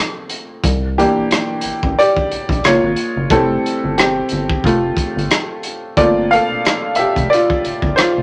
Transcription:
0.00 0.66 F3 soft
0.00 0.66 A3 soft
0.00 0.66 A#3 soft
0.00 0.65 C4 medium
0.29 closed hi-hat medium
0.64 1.06 C2 loud
0.64 kick medium
0.64 closed hi-hat medium
0.98 1.44 E3 soft
0.98 1.95 A#3 medium
0.98 1.44 D4 soft
0.98 1.98 G4 medium
0.98 closed hi-hat medium
1.17 1.23 A1 soft
1.31 cross-stick medium
1.31 closed hi-hat medium
1.61 1.72 A1 soft
1.61 closed hi-hat medium
1.83 1.95 A1 medium
1.83 kick medium
1.99 2.61 G4 medium
1.99 2.66 D5 medium
1.99 closed hi-hat medium
2.16 kick medium
2.31 2.39 A#1 soft
2.31 closed hi-hat medium
2.49 2.61 A#1 medium
2.49 kick medium
2.49 closed hi-hat soft
2.64 2.79 F#1 loud
2.64 3.28 G#3 soft
2.64 3.28 A#3 soft
2.64 3.28 F4 medium
2.64 3.33 C#5 medium
2.64 cross-stick medium
2.64 closed hi-hat medium
2.83 2.95 G#1 medium
2.96 closed hi-hat medium
3.16 3.28 F#1 medium
3.30 3.58 F1 loud
3.30 5.93 G3 medium
3.30 4.65 A3 soft
3.30 3.94 C4 medium
3.30 5.94 E4 medium
3.30 3.99 A4 medium
3.30 kick loud
3.30 closed hi-hat medium
3.66 closed hi-hat medium
3.84 4.22 G1 medium
3.98 4.61 C4 medium
3.98 4.66 G4 medium
3.98 cross-stick medium
3.98 closed hi-hat medium
4.29 4.58 G1 medium
4.29 closed hi-hat medium
4.50 kick medium
4.64 4.92 F1 loud
4.64 5.61 A3 soft
4.64 5.61 F4 medium
4.64 kick medium
4.64 closed hi-hat medium
4.97 kick medium
4.97 closed hi-hat medium
5.16 5.28 G1 medium
5.16 closed hi-hat soft
5.31 cross-stick loud
5.31 closed hi-hat medium
5.63 closed hi-hat medium
5.97 6.39 G1 loud
5.97 6.43 A3 soft
5.97 6.43 A#3 soft
5.97 6.44 C4 soft
5.97 6.29 F4 medium
5.97 6.32 D5 medium
5.97 kick loud
5.97 closed hi-hat medium
6.31 6.95 A4 medium
6.31 6.99 F5 loud
6.31 closed hi-hat medium
6.51 6.56 F1 soft
6.65 cross-stick medium
6.65 closed hi-hat medium
6.95 7.31 E5 medium
6.95 closed hi-hat medium
6.99 7.06 F1 soft
6.99 7.29 G4 medium
7.16 7.29 F1 medium
7.16 kick medium
7.16 closed hi-hat soft
7.30 7.99 D5 medium
7.30 closed hi-hat medium
7.34 7.95 F4 medium
7.50 kick medium
7.65 7.72 G1 soft
7.65 closed hi-hat medium
7.82 7.95 G1 medium
7.82 kick medium
7.96 8.06 F1 soft
7.96 8.22 C5 medium
7.96 cross-stick loud
7.96 closed hi-hat medium
8.00 8.22 F4 medium
8.17 8.22 F1 medium

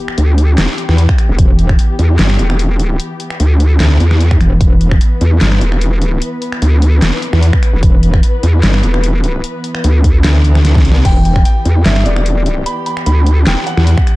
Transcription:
0.00 14.16 E3 medium
0.00 14.16 B3 medium
0.00 4.59 G4 medium
0.08 finger snap medium
0.18 0.57 D2 loud
0.18 closed hi-hat medium
0.38 closed hi-hat medium
0.58 0.67 E1 loud
0.58 snare loud
0.58 clap medium
0.58 closed hi-hat medium
0.78 closed hi-hat medium
0.89 1.07 E2 loud
0.89 finger snap medium
0.89 snare soft
0.98 closed hi-hat medium
1.09 finger snap medium
1.09 kick loud
1.18 finger snap medium
1.18 closed hi-hat medium
1.29 1.37 E1 loud
1.39 1.77 E1 loud
1.39 kick loud
1.39 closed hi-hat medium
1.59 closed hi-hat medium
1.69 finger snap medium
1.69 kick loud
1.79 closed hi-hat medium
1.99 2.18 E2 loud
1.99 closed hi-hat medium
2.19 2.38 G1 loud
2.19 snare loud
2.19 clap medium
2.19 closed hi-hat medium
2.30 finger snap medium
2.39 2.98 E1 loud
2.39 closed hi-hat medium
2.50 finger snap medium
2.59 closed hi-hat medium
2.80 closed hi-hat medium
3.00 closed hi-hat medium
3.20 closed hi-hat medium
3.30 finger snap medium
3.40 3.79 D2 loud
3.40 closed hi-hat medium
3.60 closed hi-hat medium
3.80 3.99 D2 loud
3.80 snare loud
3.80 clap medium
3.80 closed hi-hat medium
4.00 4.39 E2 loud
4.00 closed hi-hat medium
4.11 finger snap medium
4.11 snare soft
4.21 closed hi-hat medium
4.31 finger snap medium
4.31 kick loud
4.41 4.59 E1 loud
4.41 finger snap medium
4.41 closed hi-hat medium
4.61 4.99 E1 medium
4.61 11.03 B4 medium
4.61 kick loud
4.61 closed hi-hat medium
4.81 closed hi-hat soft
4.91 finger snap medium
4.91 kick loud
5.01 closed hi-hat medium
5.21 5.40 E2 medium
5.21 closed hi-hat medium
5.41 5.60 G1 loud
5.41 snare loud
5.41 clap medium
5.41 closed hi-hat medium
5.52 finger snap medium
5.61 6.20 E1 loud
5.61 closed hi-hat medium
5.72 finger snap medium
5.81 closed hi-hat medium
6.02 closed hi-hat medium
6.22 closed hi-hat medium
6.42 closed hi-hat medium
6.52 finger snap medium
6.62 7.01 D2 loud
6.62 closed hi-hat medium
6.82 closed hi-hat medium
7.02 7.11 E1 medium
7.02 snare loud
7.02 clap medium
7.02 closed hi-hat medium
7.22 closed hi-hat medium
7.33 7.51 E2 loud
7.33 finger snap medium
7.33 snare soft
7.43 closed hi-hat medium
7.53 finger snap medium
7.53 kick loud
7.63 finger snap medium
7.63 closed hi-hat medium
7.73 7.81 E1 medium
7.83 8.22 E1 loud
7.83 kick loud
7.83 closed hi-hat medium
8.03 closed hi-hat medium
8.14 finger snap medium
8.14 kick loud
8.23 closed hi-hat medium
8.43 8.62 E2 loud
8.43 closed hi-hat medium
8.63 8.82 G1 loud
8.63 snare loud
8.63 clap medium
8.63 closed hi-hat medium
8.74 finger snap medium
8.83 9.42 E1 loud
8.83 closed hi-hat medium
8.94 finger snap medium
9.04 closed hi-hat medium
9.24 closed hi-hat medium
9.44 closed hi-hat medium
9.64 closed hi-hat medium
9.75 finger snap medium
9.84 10.23 D2 loud
9.84 closed hi-hat medium
10.04 kick medium
10.04 closed hi-hat medium
10.24 10.80 D2 loud
10.24 snare loud
10.24 clap medium
10.24 closed hi-hat medium
10.45 closed hi-hat medium
10.55 finger snap medium
10.55 snare soft
10.65 snare medium
10.65 closed hi-hat medium
10.75 kick loud
10.75 snare medium
10.80 11.03 C#2 loud
10.85 closed hi-hat medium
10.92 snare loud
11.05 11.44 E1 medium
11.05 14.16 G4 medium
11.05 11.23 G5 loud
11.05 kick loud
11.05 closed hi-hat medium
11.05 crash medium
11.25 11.43 G5 medium
11.25 closed hi-hat medium
11.36 finger snap medium
11.36 kick loud
11.45 11.82 G5 medium
11.45 closed hi-hat medium
11.65 11.84 E2 loud
11.65 closed hi-hat medium
11.85 12.04 G1 medium
11.85 12.04 E5 medium
11.85 snare loud
11.85 clap medium
11.85 closed hi-hat medium
11.96 finger snap medium
12.05 12.65 E1 loud
12.05 12.58 D5 medium
12.05 closed hi-hat medium
12.16 finger snap medium
12.26 closed hi-hat medium
12.46 closed hi-hat medium
12.66 12.84 B5 loud
12.66 closed hi-hat medium
12.86 13.04 B5 medium
12.86 closed hi-hat medium
12.97 finger snap medium
13.06 13.45 D2 loud
13.06 13.43 B5 loud
13.06 closed hi-hat medium
13.26 closed hi-hat medium
13.47 13.56 E1 loud
13.47 13.65 G5 medium
13.47 snare loud
13.47 clap medium
13.47 closed hi-hat medium
13.67 14.16 F#5 medium
13.67 closed hi-hat medium
13.77 13.96 E2 loud
13.77 finger snap medium
13.77 snare soft
13.87 closed hi-hat medium
13.98 finger snap medium
13.98 kick loud
14.07 finger snap medium
14.07 closed hi-hat medium

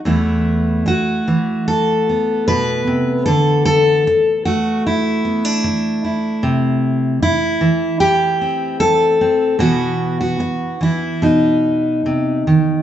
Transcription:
0.05 0.85 E2 medium
0.05 1.27 E3 soft
0.05 4.45 A3 soft
0.05 0.87 B3 soft
0.05 1.67 E4 soft
0.86 2.08 F#4 medium
0.86 muted steel-string acoustic guitar stroke medium
1.28 6.43 E3 medium
1.68 2.47 A4 loud
2.09 3.28 B3 soft
2.48 2.87 B2 medium
2.48 3.25 B4 loud
2.87 3.27 C3 medium
3.26 4.06 D3 medium
3.26 3.64 A4 loud
3.65 4.45 A4 loud
4.07 muted steel-string acoustic guitar stroke medium
4.45 9.60 A3 medium
4.45 4.85 F#4 medium
4.87 6.03 E4 medium
5.25 5.45 B3 soft
5.45 6.43 D4 soft
5.64 muted steel-string acoustic guitar stroke medium
6.04 7.21 E4 soft
6.43 7.21 C3 medium
7.22 8.00 E4 medium
7.22 muted steel-string acoustic guitar stroke medium
7.61 9.59 E3 medium
8.00 8.80 G4 loud
8.41 9.20 C4 soft
8.80 9.60 A4 loud
8.80 muted steel-string acoustic guitar stroke medium
9.21 9.55 C4 soft
9.59 10.39 B2 medium
9.59 10.79 E3 soft
9.59 11.17 B3 soft
9.59 10.19 F#4 loud
10.21 10.81 F#4 medium
10.40 muted steel-string acoustic guitar stroke medium
10.81 11.22 E3 medium
10.81 11.23 E4 medium
11.22 12.05 B2 medium
11.22 12.82 D#4 medium
12.06 12.47 C3 medium
12.47 12.82 D#3 medium

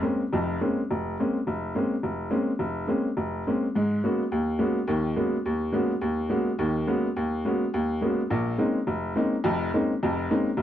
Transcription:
0.02 0.21 G#3 soft
0.02 0.22 A#3 soft
0.02 0.21 C4 soft
0.02 0.22 C#4 medium
0.33 0.57 F1 medium
0.33 0.57 F2 medium
0.61 0.79 G#3 soft
0.61 0.79 A#3 soft
0.61 0.79 C4 soft
0.61 0.80 C#4 medium
0.91 1.14 F1 medium
1.20 1.37 G#3 soft
1.20 1.37 A#3 soft
1.20 1.37 C4 soft
1.20 1.37 C#4 medium
1.47 1.71 F1 medium
1.75 1.93 G#3 soft
1.75 1.94 A#3 soft
1.75 1.94 C4 soft
1.75 1.94 C#4 medium
2.03 2.27 F1 medium
2.30 2.50 G#3 soft
2.30 2.50 A#3 soft
2.30 2.50 C4 soft
2.30 2.50 C#4 medium
2.59 2.84 F1 medium
2.87 3.06 G#3 soft
2.87 3.07 A#3 soft
2.87 3.07 C4 soft
2.87 3.07 C#4 medium
3.17 3.41 F1 medium
3.47 3.65 G#3 medium
3.47 3.65 A#3 soft
3.47 3.65 C4 soft
3.47 3.65 C#4 medium
3.75 3.99 G#2 medium
3.75 3.99 G#3 medium
4.04 4.22 G#3 soft
4.04 4.22 A#3 soft
4.04 4.22 B3 soft
4.04 4.22 C#4 soft
4.04 4.22 F#4 medium
4.32 4.56 D#2 medium
4.59 4.78 G#3 medium
4.59 4.78 A#3 soft
4.59 4.78 B3 medium
4.59 4.78 C#4 soft
4.59 4.78 F#4 medium
4.87 5.12 D#2 medium
4.87 5.12 D#3 medium
5.16 5.35 G#3 medium
5.16 5.35 A#3 soft
5.16 5.35 B3 soft
5.16 5.35 C#4 soft
5.16 5.35 F#4 medium
5.46 5.70 D#2 medium
5.72 5.91 G#3 medium
5.72 5.91 A#3 soft
5.72 5.91 B3 soft
5.72 5.92 C#4 soft
5.72 5.92 F#4 medium
6.01 6.26 D#2 medium
6.29 6.49 G#3 medium
6.29 6.49 A#3 soft
6.29 6.48 B3 soft
6.29 6.48 C#4 soft
6.29 6.49 F#4 medium
6.59 6.83 D#2 medium
6.59 6.83 D#3 medium
6.87 7.06 G#3 medium
6.87 7.06 A#3 soft
6.87 7.06 B3 medium
6.87 7.06 C#4 medium
6.87 7.06 F#4 medium
7.16 7.40 D#2 medium
7.45 7.63 G#3 medium
7.45 7.63 A#3 soft
7.45 7.64 B3 soft
7.45 7.63 C#4 soft
7.45 7.64 F#4 medium
7.74 7.98 D#2 medium
8.01 8.20 G#3 medium
8.01 8.20 A#3 medium
8.01 8.20 B3 soft
8.01 8.20 C#4 soft
8.01 8.20 F#4 medium
8.30 8.54 A#1 medium
8.30 8.54 A#2 medium
8.58 8.77 G#3 medium
8.58 8.77 A#3 soft
8.58 8.77 C4 soft
8.58 8.77 C#4 soft
8.58 8.77 D#4 medium
8.87 9.11 F1 medium
9.16 9.34 G#3 medium
9.16 9.34 A#3 medium
9.16 9.34 C4 soft
9.16 9.34 C#4 soft
9.16 9.34 D#4 medium
9.44 9.69 F1 medium
9.44 9.68 F2 medium
9.74 9.91 G#3 soft
9.74 9.92 A#3 soft
9.74 9.92 C4 soft
9.74 9.92 C#4 soft
9.74 9.92 D#4 medium
10.03 10.26 F1 medium
10.03 10.26 F2 medium
10.31 10.48 G#3 medium
10.31 10.48 A#3 soft
10.31 10.49 C4 medium
10.31 10.49 C#4 soft
10.31 10.48 D#4 medium
10.57 10.62 F1 medium

